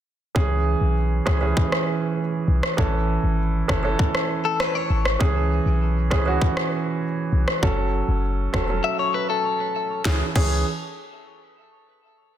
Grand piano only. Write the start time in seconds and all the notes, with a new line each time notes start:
0.35 E3 C#4 G#4
1.26 E3 C#4 G#4
1.41 E3 C#4 G#4
2.77 E3 C#4 A4
3.68 E3 C#4 A4
3.83 E3 C#4 A4
5.20 E3 C#4 G#4
6.11 E3 C#4 G#4
6.26 E3 C#4 F#4
7.62 F#3 C#4 A4
8.53 F#3 C#4 A4
8.68 F#3 C#4 A4
10.05 E3 C#4 G#4
10.36 E3 C#4 G#4